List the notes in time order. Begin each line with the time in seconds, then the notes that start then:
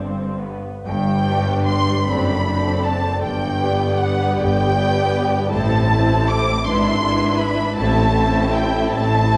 Already playing: G1 G2 C4
0.40 B3
0.85 G1 G2 G5
1.27 G3 D4 G4 B4
1.66 C6
2.06 F#1 F#2 C4 D4 A4 D5 B5
2.46 C4 D4 A4 D5
2.84 A5
3.23 G1 G2 G5
3.59 B3 G4 B4 D5
3.99 F#5
4.37 G1 G2 G5
4.74 B3 G4 B4 D5
5.50 A1 A2 C4 E4 A4 C5 A5
5.89 C4 E4 A4 C5
6.30 D6
6.65 G#1 G#2 D4 E4 B4 E5 C6
7.02 D4 E4 B4 E5
7.38 B5
7.76 A1 A2 C4 E4 A4 E5 A5
8.14 C4 E4 A4 E5
8.53 G5
8.89 A1 A2 A5
9.27 C4 E4 A4 E5